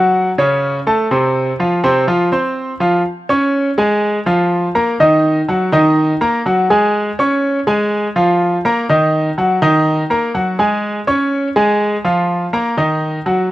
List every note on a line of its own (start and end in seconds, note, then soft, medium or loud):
0.00 0.29 F#3 medium
0.00 0.30 F#4 medium
0.00 0.30 F#5 medium
0.38 0.78 C#3 medium
0.38 0.78 C#4 medium
0.38 0.78 C#5 medium
0.87 1.07 A3 medium
0.87 1.07 A4 medium
0.87 1.07 A5 medium
1.11 1.51 C3 medium
1.11 1.51 C4 medium
1.11 1.51 C5 medium
1.60 1.79 F3 medium
1.60 1.80 F4 medium
1.60 1.80 F5 medium
1.84 2.04 C3 medium
1.84 2.04 C4 medium
1.84 2.04 C5 medium
2.07 2.28 F3 medium
2.07 2.28 F4 medium
2.07 2.28 F5 medium
2.32 2.72 C4 medium
2.32 2.72 C5 medium
2.32 2.72 C6 medium
2.80 3.00 F3 medium
2.80 3.01 F4 medium
2.80 3.01 F5 medium
3.29 3.69 C#4 medium
3.29 3.69 C#5 medium
3.29 3.70 C#6 medium
3.78 4.18 G#3 medium
3.78 4.18 G#4 medium
3.78 4.18 G#5 medium
4.26 4.66 F3 medium
4.26 4.66 F4 medium
4.26 4.66 F5 medium
4.75 4.95 A#3 medium
4.75 4.95 A#4 medium
4.75 4.95 A#5 medium
5.00 5.40 D#3 medium
5.00 5.40 D#4 medium
5.00 5.40 D#5 medium
5.48 5.68 F#3 medium
5.48 5.68 F#4 medium
5.48 5.69 F#5 medium
5.72 6.12 D#3 medium
5.72 6.12 D#4 medium
5.72 6.13 D#5 medium
6.21 6.41 A#3 medium
6.21 6.41 A#4 medium
6.21 6.41 A#5 medium
6.46 6.65 F#3 medium
6.46 6.66 F#4 medium
6.46 6.66 F#5 medium
6.70 7.10 G#3 medium
6.70 7.10 G#4 medium
6.70 7.10 G#5 medium
7.19 7.58 C#4 medium
7.19 7.59 C#5 medium
7.19 7.59 C#6 medium
7.67 8.07 G#3 medium
7.67 8.07 G#4 medium
7.67 8.07 G#5 medium
8.16 8.55 F3 medium
8.16 8.56 F4 medium
8.16 8.56 F5 medium
8.65 8.84 A#3 medium
8.65 8.85 A#4 medium
8.65 8.85 A#5 medium
8.89 9.29 D#3 medium
8.89 9.29 D#4 medium
8.89 9.29 D#5 medium
9.38 9.57 F#3 medium
9.38 9.58 F#4 medium
9.38 9.58 F#5 medium
9.62 10.02 D#3 medium
9.62 10.02 D#4 medium
9.62 10.02 D#5 medium
10.10 10.30 A#3 medium
10.10 10.30 A#4 medium
10.10 10.30 A#5 medium
10.34 10.54 F#3 medium
10.34 10.54 F#4 medium
10.34 10.55 F#5 medium
10.59 10.99 G#3 medium
10.59 10.99 G#4 medium
10.59 10.99 G#5 medium
11.07 11.47 C#4 medium
11.07 11.47 C#5 medium
11.07 11.47 C#6 medium
11.56 11.96 G#3 medium
11.56 11.96 G#4 medium
11.56 11.96 G#5 medium
12.04 12.44 F3 medium
12.04 12.45 F4 medium
12.04 12.45 F5 medium
12.53 12.73 A#3 medium
12.53 12.73 A#4 medium
12.53 12.74 A#5 medium
12.77 13.17 D#3 medium
12.77 13.18 D#4 medium
12.77 13.18 D#5 medium
13.26 13.46 F#3 medium
13.26 13.46 F#4 medium
13.26 13.46 F#5 medium